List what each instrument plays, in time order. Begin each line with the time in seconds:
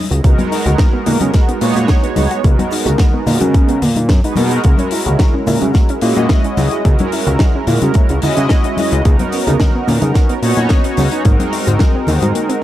0.10 analog synth bass C#2, synth arpeggio sound F#4, closed hi-hat, shaker
0.23 analog synth bass C#2, analog polysynth G#3 B3 D#4 F#4 A#4, synth arpeggio sound A#3, kick, closed hi-hat, shaker
0.38 synth arpeggio sound B3, closed hi-hat, high conga
0.52 synth arpeggio sound D#4, open hi-hat, shaker
0.66 analog synth bass C#2, synth arpeggio sound F#4, closed hi-hat, low conga, shaker
0.78 synth arpeggio sound A#3, kick, snare, closed hi-hat, high conga, shaker
0.93 synth arpeggio sound B3
1.06 analog synth bass A#2, synth arpeggio sound D#4, open hi-hat, low conga, shaker
1.21 analog synth bass C#3, synth arpeggio sound F#4, closed hi-hat, high conga, shaker
1.33 synth arpeggio sound A#3, kick, snare, closed hi-hat, shaker
1.48 synth arpeggio sound B3, closed hi-hat
1.60 analog synth bass A#2, analog polysynth G#3 B3 D#4 F#4 C#5, synth arpeggio sound D#4, open hi-hat, shaker
1.75 analog synth bass A#2, synth arpeggio sound F#4, closed hi-hat, high conga, shaker
1.88 synth arpeggio sound A#3, kick, snare, closed hi-hat, shaker
2.03 synth arpeggio sound B3, closed hi-hat
2.16 analog synth bass C#2, synth arpeggio sound D#4, open hi-hat, high conga, shaker
2.30 synth arpeggio sound F#4, closed hi-hat, shaker
2.43 analog synth bass C#2, analog polysynth G#3 B3 D#4 F#4 A#4, synth arpeggio sound A#3, kick, closed hi-hat, shaker
2.59 synth arpeggio sound B3, closed hi-hat, high conga
2.71 synth arpeggio sound D#4, open hi-hat, shaker
2.86 analog synth bass C#2, synth arpeggio sound F#4, closed hi-hat, low conga, shaker
2.98 synth arpeggio sound A#3, kick, snare, closed hi-hat, high conga, shaker
3.14 synth arpeggio sound B3
3.27 analog synth bass A#2, synth arpeggio sound D#4, open hi-hat, low conga, shaker
3.40 analog synth bass C#3, synth arpeggio sound F#4, closed hi-hat, high conga, shaker
3.54 synth arpeggio sound A#3, kick, closed hi-hat, shaker
3.68 synth arpeggio sound B3, closed hi-hat
3.82 analog synth bass A#2, synth arpeggio sound A#3, open hi-hat, low conga, shaker
3.96 synth arpeggio sound D#4, closed hi-hat, high conga, shaker
4.09 analog synth bass F#2, synth arpeggio sound B3, kick, snare, closed hi-hat, shaker
4.24 analog polysynth G#3 B3 D#4 F#4 B4, synth arpeggio sound D#4, closed hi-hat
4.36 analog synth bass B2, analog polysynth G#3 B3 D#4 F#4 A#4, synth arpeggio sound A#3, open hi-hat, high conga, shaker
4.50 synth arpeggio sound F#4, closed hi-hat, shaker
4.63 analog synth bass C#2, analog polysynth G#3 C#4 E4 F#4 A#4, synth arpeggio sound A#3, kick, closed hi-hat, shaker
4.78 synth arpeggio sound C#4, closed hi-hat, high conga
4.91 synth arpeggio sound E4, open hi-hat, shaker
5.06 analog synth bass C#2, synth arpeggio sound F#4, closed hi-hat, low conga, shaker
5.19 synth arpeggio sound F#4, kick, snare, closed hi-hat, high conga, shaker
5.34 synth arpeggio sound C#4
5.47 analog synth bass A#2, synth arpeggio sound E4, open hi-hat, low conga, shaker
5.61 analog synth bass C#3, synth arpeggio sound F#4, closed hi-hat, high conga, shaker
5.74 synth arpeggio sound A#3, kick, snare, closed hi-hat, shaker
5.89 synth arpeggio sound C#4, closed hi-hat
6.01 analog synth bass A#2, analog polysynth G#3 C#4 E4 F#4 D#5, synth arpeggio sound E4, open hi-hat, shaker
6.16 analog synth bass A#2, synth arpeggio sound F#4, closed hi-hat, high conga, shaker
6.29 synth arpeggio sound A#3, kick, snare, closed hi-hat, shaker
6.44 synth arpeggio sound C#4, closed hi-hat
6.57 analog synth bass C#2, synth arpeggio sound E4, open hi-hat, high conga, shaker
6.71 synth arpeggio sound F#4, closed hi-hat, shaker
6.84 analog synth bass C#2, analog polysynth G#3 C#4 E4 F#4 A#4, synth arpeggio sound A#3, kick, closed hi-hat, shaker
6.99 synth arpeggio sound C#4, closed hi-hat, high conga
7.12 synth arpeggio sound E4, open hi-hat, shaker
7.27 analog synth bass C#2, synth arpeggio sound F#4, closed hi-hat, low conga, shaker
7.39 synth arpeggio sound F#4, kick, snare, closed hi-hat, high conga, shaker
7.55 synth arpeggio sound C#4
7.67 analog synth bass A#2, synth arpeggio sound E4, open hi-hat, low conga, shaker
7.82 analog synth bass C#3, synth arpeggio sound F#4, closed hi-hat, high conga, shaker
7.94 synth arpeggio sound A#3, kick, closed hi-hat, shaker
8.09 analog synth bass C#2, synth arpeggio sound C#4, closed hi-hat
8.21 analog polysynth G#3 C#4 E4 F#4 D#5, synth arpeggio sound E4, open hi-hat, low conga, shaker
8.37 analog synth bass C#3, synth arpeggio sound F#4, closed hi-hat, high conga, shaker
8.49 synth arpeggio sound A#3, kick, snare, closed hi-hat, shaker
8.64 synth arpeggio sound C#4, closed hi-hat
8.77 synth arpeggio sound E4, open hi-hat, high conga, shaker
8.91 analog synth bass C#2, synth arpeggio sound F#4, closed hi-hat, shaker
9.04 analog synth bass C#2, synth arpeggio sound A#3, analog polysynth B3 C#4 D#4 F#4 A#4, kick, closed hi-hat, shaker
9.19 synth arpeggio sound B3, closed hi-hat, high conga
9.32 synth arpeggio sound C#4, open hi-hat, shaker
9.47 analog synth bass C#2, synth arpeggio sound D#4, closed hi-hat, low conga, shaker
9.60 synth arpeggio sound D#4, kick, snare, closed hi-hat, high conga, shaker
9.75 synth arpeggio sound B3
9.87 analog synth bass A#2, synth arpeggio sound C#4, open hi-hat, low conga, shaker
10.02 analog synth bass C#3, synth arpeggio sound D#4, closed hi-hat, high conga, shaker
10.14 synth arpeggio sound A#3, kick, snare, closed hi-hat, shaker
10.29 synth arpeggio sound B3, closed hi-hat
10.42 analog synth bass A#2, analog polysynth B3 C#4 D#4 F#4 C#5, synth arpeggio sound C#4, open hi-hat, shaker
10.56 analog synth bass A#2, synth arpeggio sound D#4, closed hi-hat, high conga, shaker
10.69 synth arpeggio sound A#3, kick, snare, closed hi-hat, shaker
10.84 synth arpeggio sound B3, closed hi-hat
10.97 analog synth bass C#2, synth arpeggio sound C#4, open hi-hat, high conga, shaker
11.11 synth arpeggio sound D#4, closed hi-hat, shaker
11.24 analog synth bass G#1, analog polysynth G#3 C4 F#4 A#4, synth arpeggio sound A#3, kick, closed hi-hat, shaker
11.39 synth arpeggio sound C4, closed hi-hat, high conga
11.53 synth arpeggio sound D#4, open hi-hat, shaker
11.67 analog synth bass G#1, synth arpeggio sound F#4, closed hi-hat, low conga, shaker
11.79 synth arpeggio sound F#4, kick, snare, closed hi-hat, high conga, shaker
11.95 synth arpeggio sound C4
12.07 analog synth bass D#2, synth arpeggio sound D#4, open hi-hat, low conga, shaker
12.22 analog synth bass G#2, synth arpeggio sound F#4, closed hi-hat, high conga, shaker
12.35 synth arpeggio sound A#3, closed hi-hat, shaker
12.49 synth arpeggio sound C4, closed hi-hat